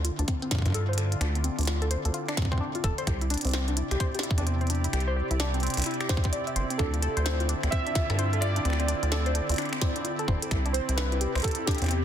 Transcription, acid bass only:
0.00 0.11 D2 medium
0.19 0.25 D2 loud
0.66 1.16 G2 medium
1.21 1.50 D2 loud
1.59 1.97 D2 medium
2.05 2.11 D2 loud
2.84 2.93 D1 medium
3.07 3.37 C2 loud
3.45 3.83 C2 medium
3.91 3.97 C2 loud
4.38 4.88 E2 medium
4.93 5.23 C2 loud
5.31 5.69 C2 medium
5.77 5.83 C2 loud
6.56 6.65 G1 medium
6.79 7.09 D2 loud
7.17 7.55 D2 medium
7.63 7.69 D2 loud
8.10 8.60 G2 loud
8.65 8.95 D2 loud
9.03 9.41 D2 medium
9.49 9.55 D2 medium
10.28 10.37 D1 medium
10.51 10.81 C2 loud
10.89 11.27 C2 medium
11.35 11.41 C2 loud
11.82 12.05 E2 loud

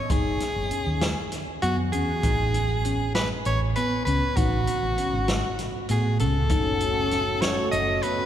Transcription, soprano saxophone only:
0.00 0.13 C#5 medium
0.11 1.37 G#4 medium
1.62 1.76 F#4 medium
1.92 3.11 G#4 medium
3.15 3.29 B4 medium
3.46 3.60 C#5 medium
3.76 4.04 B4 medium
4.05 4.38 B4 medium
4.37 5.63 F#4 medium
5.91 6.19 G#4 medium
6.20 7.43 A4 medium
7.41 7.71 C#5 medium
7.71 8.04 D#5 medium
8.02 8.26 B4 medium

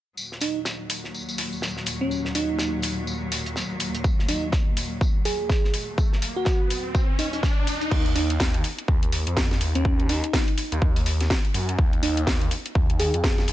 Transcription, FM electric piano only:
0.41 0.60 D#4 medium
2.01 2.33 C#4 medium
2.35 3.04 D#4 medium
4.29 4.47 D#4 medium
5.25 5.74 G#4 medium
6.36 7.03 F#4 medium
7.19 7.28 D#4 medium
7.33 7.40 D#4 medium
8.16 8.34 D#4 medium
9.75 10.07 C#4 medium
10.09 10.78 D#4 medium
12.03 12.21 D#4 medium
13.00 13.48 G#4 medium

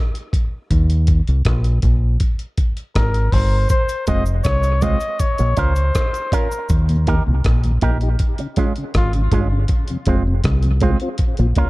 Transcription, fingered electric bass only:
0.72 1.20 D#2 loud
1.28 1.44 C2 medium
1.46 1.78 A#1 medium
1.84 2.16 A#1 medium
2.96 3.28 G#1 medium
3.33 3.65 G1 loud
4.08 4.40 F1 medium
4.46 4.94 C2 loud
5.40 5.56 A#1 medium
5.58 5.90 C#2 medium
6.71 7.19 D#2 loud
7.28 7.43 C2 medium
7.46 7.78 A#1 medium
7.83 8.15 A#1 medium
8.96 9.28 G#1 medium
9.32 9.64 G1 medium
10.07 10.40 F1 medium
10.45 10.94 C2 loud
11.39 11.55 A#1 medium
11.57 11.70 C#2 medium

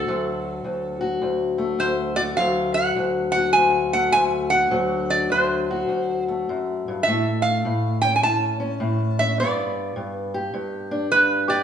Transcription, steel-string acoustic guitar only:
0.00 1.58 A3 medium
0.00 1.00 F#4 medium
0.08 0.64 D2 medium
0.08 2.38 F#3 medium
0.64 1.21 D2 medium
1.01 2.16 F#4 medium
1.22 1.78 D2 medium
1.58 3.93 A3 medium
1.79 2.38 D2 medium
2.16 3.36 F#4 medium
2.38 2.96 D2 medium
2.38 4.70 F#3 medium
2.96 3.55 D2 medium
3.36 4.51 F#4 medium
3.55 4.12 D2 medium
3.93 6.26 A3 medium
4.13 4.69 D2 medium
4.52 4.69 F#4 medium
4.71 5.29 D2 medium
4.71 7.04 F#3 medium
5.32 5.87 D2 medium
5.71 7.03 F#4 medium
5.88 6.46 D2 medium
6.28 7.07 A3 medium
6.49 6.86 F#2 medium
6.88 7.06 G2 medium
7.07 7.64 A2 medium
7.07 9.36 A3 medium
7.65 8.22 A2 medium
8.04 8.59 C#4 medium
8.23 8.79 A2 medium
8.60 9.17 C#4 medium
8.80 9.37 A2 medium
9.20 9.36 C#4 medium
9.40 9.95 G2 medium
9.40 11.63 B3 medium
9.96 10.52 G2 medium
10.34 11.47 G4 medium
10.54 11.11 G2 medium
10.91 11.63 D4 medium
11.12 11.63 G2 medium
11.48 11.63 G4 medium

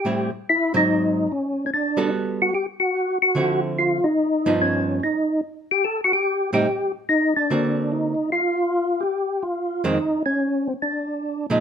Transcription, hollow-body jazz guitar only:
0.05 0.29 A2 medium
0.05 0.29 G3 medium
0.05 0.30 C4 medium
0.05 0.30 E4 medium
0.74 1.26 G#2 medium
0.74 1.26 F#3 medium
0.74 1.26 C4 medium
1.97 2.50 G3 medium
1.97 2.50 B3 medium
1.97 2.50 F#4 medium
1.97 2.50 A4 medium
3.35 3.98 D3 medium
3.35 3.99 F3 medium
3.35 3.99 C4 medium
3.35 3.99 E4 medium
4.46 4.99 G2 medium
4.46 4.99 F3 medium
4.46 4.99 B3 medium
4.46 4.99 D#4 medium
6.53 6.66 A2 medium
6.53 6.66 G3 medium
6.53 6.66 C4 medium
6.53 6.66 D#4 medium
7.50 8.13 D3 medium
7.50 8.13 A#3 medium
7.50 8.14 C4 medium
7.50 8.14 F#4 medium
9.84 9.97 F2 medium
9.84 9.97 D#3 medium
9.84 9.97 G#3 medium
9.84 9.97 C4 medium
11.50 11.60 A#2 medium
11.50 11.60 F3 medium
11.50 11.60 G#3 medium
11.50 11.60 D#4 medium

